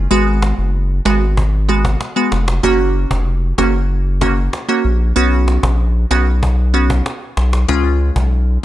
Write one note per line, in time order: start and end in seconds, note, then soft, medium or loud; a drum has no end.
0.11 0.53 G#1 loud
0.11 0.69 G#3 loud
0.11 0.69 B3 medium
0.11 0.69 F#4 loud
0.42 cajon slap medium
0.58 1.00 F#1 medium
1.05 1.96 G#1 medium
1.05 1.19 G#3 medium
1.05 1.19 B3 medium
1.05 1.19 F#4 medium
1.05 cajon slap medium
1.37 cajon bass medium
1.69 1.82 G#3 medium
1.69 1.82 B3 medium
1.69 1.82 F#4 medium
1.69 cajon slap soft
1.85 cajon bass medium
2.01 cajon slap medium
2.16 2.29 G#3 medium
2.16 2.29 B3 medium
2.16 2.29 F#4 medium
2.32 2.60 F1 medium
2.32 cajon slap medium
2.48 cajon slap medium
2.63 3.06 F#1 loud
2.63 3.22 A#3 medium
2.63 3.22 C#4 medium
2.63 3.22 F#4 loud
2.63 cajon bass loud
2.95 cajon slap soft
3.11 3.53 F1 medium
3.11 cajon bass loud
3.58 4.49 F#1 medium
3.58 3.71 A#3 medium
3.58 3.71 C#4 medium
3.58 3.71 F#4 medium
3.58 cajon bass medium
3.58 cajon slap medium
4.21 4.34 A#3 medium
4.21 4.35 C#4 medium
4.21 4.35 F#4 medium
4.21 cajon bass loud
4.53 cajon slap medium
4.69 4.82 A#3 medium
4.69 4.82 C#4 medium
4.69 4.82 F#4 medium
4.85 5.13 A#1 medium
4.85 cajon slap soft
5.16 5.58 B1 loud
5.16 5.74 B3 loud
5.16 5.74 C#4 medium
5.16 5.75 F#4 loud
5.48 cajon slap medium
5.63 6.06 A#1 loud
5.63 cajon bass loud
6.11 7.02 B1 medium
6.11 6.24 B3 medium
6.11 6.24 C#4 medium
6.11 6.24 F#4 medium
6.11 cajon slap medium
6.43 cajon bass medium
6.74 6.87 B3 medium
6.74 6.87 C#4 medium
6.74 6.87 F#4 medium
6.74 cajon slap soft
6.90 cajon bass medium
7.06 cajon slap medium
7.37 7.65 B1 medium
7.37 cajon slap medium
7.53 cajon slap medium
7.69 8.11 C#2 loud
7.69 8.27 G#3 medium
7.69 8.27 C#4 medium
7.69 8.27 F4 loud
7.69 cajon bass loud
8.01 cajon slap soft
8.16 8.58 B1 loud
8.16 cajon bass loud